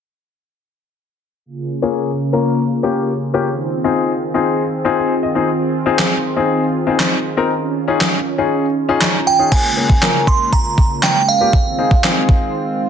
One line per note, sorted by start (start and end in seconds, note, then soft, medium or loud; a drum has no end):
1.45 3.45 C#3 medium
1.45 3.45 A#3 medium
1.45 9.48 F4 medium
1.45 9.48 G#4 medium
1.82 2.09 A#3 medium
1.82 2.09 C#4 medium
1.82 2.09 F4 medium
1.82 2.09 G#4 medium
2.33 2.60 A#3 medium
2.33 2.60 C#4 medium
2.33 2.60 F4 medium
2.33 2.60 A#4 medium
2.83 3.10 A#3 medium
2.83 3.10 C#4 medium
2.83 3.10 F4 medium
2.83 3.10 G4 medium
3.34 3.47 A#3 medium
3.34 3.47 C#4 medium
3.34 3.47 F4 medium
3.34 3.47 G4 medium
3.47 9.48 D#3 medium
3.47 7.46 C4 medium
3.84 4.11 C4 medium
3.84 4.11 D#4 medium
3.84 4.11 F4 medium
3.84 4.11 G#4 medium
4.34 4.61 C4 medium
4.34 4.61 D#4 medium
4.34 4.61 F4 medium
4.34 4.61 G#4 medium
4.85 5.12 C4 medium
4.85 5.12 D#4 medium
4.85 5.12 F4 medium
4.85 5.12 G#4 loud
4.98 5.21 G#5 medium
5.23 5.46 D#5 medium
5.35 5.48 C4 medium
5.35 5.48 D#4 medium
5.35 5.48 F4 medium
5.35 5.48 G#4 medium
5.86 6.13 C4 medium
5.86 6.13 D#4 medium
5.86 6.13 F4 medium
5.86 6.13 G#4 medium
5.99 snare medium
5.99 clap loud
6.36 6.63 C4 medium
6.36 6.63 D#4 medium
6.36 6.63 F4 medium
6.36 6.63 G#4 medium
6.87 7.13 C4 medium
6.87 7.14 D#4 medium
6.87 7.14 F4 medium
6.87 7.14 G#4 medium
7.00 snare medium
7.00 clap loud
7.37 7.50 C4 medium
7.37 7.50 D#4 medium
7.37 7.50 F4 medium
7.37 7.50 A#4 medium
7.50 9.50 C#4 medium
7.88 8.14 C#4 medium
7.88 8.14 D#4 medium
7.88 8.15 F4 medium
7.88 8.15 G#4 medium
8.01 snare medium
8.01 clap loud
8.38 8.65 C#4 medium
8.38 8.65 D#4 medium
8.38 8.65 F4 medium
8.38 8.65 G#4 medium
8.89 9.15 C#4 medium
8.89 9.15 D#4 medium
8.89 9.15 F4 medium
8.89 9.16 G#4 loud
9.01 snare medium
9.01 clap loud
9.27 9.38 G5 medium
9.27 9.50 G#5 medium
9.39 9.50 C#4 medium
9.39 9.52 D#4 medium
9.39 9.50 F4 medium
9.39 9.50 G#4 medium
9.51 11.51 C#3 medium
9.51 12.89 G#3 medium
9.51 9.65 A#3 medium
9.51 11.51 A#3 medium
9.51 9.65 C#4 medium
9.51 12.89 F4 medium
9.51 9.65 F4 medium
9.51 10.30 G#5 medium
9.51 kick loud
9.51 crash medium
9.77 9.90 A#3 medium
9.77 9.90 C#4 medium
9.77 9.90 F4 medium
9.77 9.91 G#4 medium
9.90 kick medium
10.02 10.55 A#3 medium
10.02 10.55 C#4 medium
10.02 10.55 F4 medium
10.02 10.56 A#4 medium
10.02 snare medium
10.02 clap loud
10.27 10.51 C6 medium
10.27 kick medium
10.53 11.05 A#5 medium
10.53 kick medium
10.78 kick medium
11.03 11.27 G5 medium
11.03 snare medium
11.03 clap loud
11.28 12.89 F5 medium
11.41 11.53 A#3 medium
11.41 11.53 C#4 medium
11.41 11.53 F4 medium
11.41 11.54 G4 medium
11.53 12.89 D#3 medium
11.53 12.89 C4 medium
11.53 kick loud
11.78 11.92 C4 medium
11.78 11.92 D#4 medium
11.78 11.92 F4 medium
11.78 11.92 G#4 medium
11.91 kick medium
12.03 12.50 C4 medium
12.03 12.50 D#4 medium
12.03 12.50 F4 medium
12.03 12.50 G#4 medium
12.03 snare medium
12.03 clap loud
12.29 kick medium